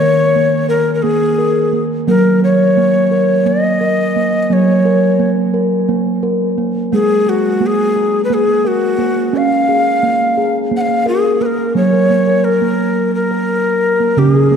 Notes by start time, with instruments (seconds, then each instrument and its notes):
Already playing: steel tongue drum D#3, native american-style wooden flute C#5
0.01 steel tongue drum A#4
0.36 steel tongue drum A#3
0.69 steel tongue drum A#4, native american-style wooden flute A#4
0.95 native american-style wooden flute A#4
1.02 steel tongue drum A#3, native american-style wooden flute G#4
1.38 steel tongue drum A#4
1.73 steel tongue drum A#3
2.07 steel tongue drum F#3 A#3, native american-style wooden flute A#4
2.43 steel tongue drum A#4, native american-style wooden flute C#5
2.77 steel tongue drum A#3
3.11 steel tongue drum A#4
3.46 steel tongue drum A#3, native american-style wooden flute D#5
3.81 steel tongue drum A#4
4.16 steel tongue drum A#3
4.43 native american-style wooden flute D#5
4.50 steel tongue drum F#3 A#3, native american-style wooden flute C#5
4.85 steel tongue drum A#4
5.20 steel tongue drum A#3
5.54 steel tongue drum A#4
5.89 steel tongue drum A#3
6.23 steel tongue drum A#4
6.58 steel tongue drum A#3
6.92 steel tongue drum G#3 A#3, native american-style wooden flute G#4
7.26 native american-style wooden flute F#4, steel tongue drum G#4
7.61 steel tongue drum A#3
7.66 native american-style wooden flute G#4
7.96 steel tongue drum G#4
8.25 native american-style wooden flute B4
8.30 steel tongue drum A#3, native american-style wooden flute G#4
8.65 native american-style wooden flute F#4, steel tongue drum A#4
8.99 steel tongue drum A#3
9.33 steel tongue drum C#4, native american-style wooden flute F5
9.69 steel tongue drum G#4
10.03 steel tongue drum A#3
10.38 steel tongue drum G#4
10.71 steel tongue drum A#3
10.77 native american-style wooden flute F#5
10.81 native american-style wooden flute F5
11.06 native american-style wooden flute G#4, steel tongue drum A#4
11.41 steel tongue drum A#3, native american-style wooden flute B4
11.46 native american-style wooden flute A#4
11.75 steel tongue drum F#3 A#3, native american-style wooden flute C#5
11.93 steel tongue drum A#4
12.10 steel tongue drum A#3
12.27 steel tongue drum A#4
12.44 native american-style wooden flute A#4
12.62 steel tongue drum A#3
13.15 native american-style wooden flute A#4
13.31 steel tongue drum A#4
14.00 steel tongue drum A#3
14.17 steel tongue drum C#3 C#4, native american-style wooden flute G4
14.35 steel tongue drum G#4, native american-style wooden flute G#4
14.51 steel tongue drum A#3